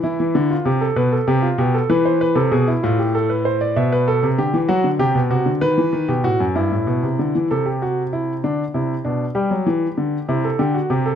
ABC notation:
X:1
M:6/8
L:1/16
Q:3/8=64
K:Am
V:1 name="Grand piano"
E3 F G A B A G F G A | B c B A ^G E F =G A B c d | e B A2 G2 ^F2 G2 F2 | B3 G ^F2 E6 |
A G ^F2 E2 D2 E2 D2 | G6 E A G ^F G A |]
V:2 name="Grand piano" clef=bass
E, E, D,2 C,2 B,,2 C,2 B,,2 | E,3 C, B,,2 A,,6 | B,,3 C, D, E, ^F, D, C, B,, C, D, | ^D, E, D, B,, A,, ^F,, G,, A,, B,, C, =D, E, |
C,6 D,2 C,2 B,,2 | G, ^F, E,2 D,2 C,2 D,2 C,2 |]